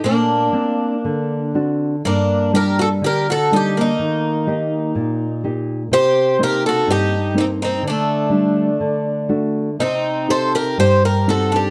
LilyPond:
<<
  \new Staff \with { instrumentName = "Twelve-string acoustic guitar" } { \time 2/4 \key d \phrygian \tempo 4 = 61 d'4. r8 | \key g \minor d'8 bes'16 a'16 bes'16 a'16 g'16 ees'16~ | ees'4. r8 | c''8 bes'16 a'16 g'8 ees'16 ees'16 |
d'4. r8 | ees'8 c''16 bes'16 c''16 bes'16 a'16 g'16 | }
  \new Staff \with { instrumentName = "Twelve-string acoustic guitar" } { \time 2/4 \key d \phrygian bes4. r8 | \key g \minor bes8 g'16 fis'16 g'16 fis'16 ees'16 bes16~ | bes4. r8 | g'8 g'16 fis'16 ees'8 c'16 c'16 |
a4. r8 | c'8 a'16 g'16 g'16 g'16 fis'16 d'16 | }
  \new Staff \with { instrumentName = "Nylon-string guitar" } { \time 2/4 \key d \phrygian bes,8 <bes c' d'>8 d8 <c' d' fis'>8 | \key g \minor g,8 <g bes d'>8 d8 <g bes d'>8 | ees8 <bes ees' g'>8 bes,8 <bes ees' g'>8 | c8 <bes c' ees'>8 g,8 <bes c' ees'>8 |
d8 <g a d'>8 d8 <a d' fis'>8 | c8 <c' ees' g'>8 g,8 <c' ees' g'>8 | }
>>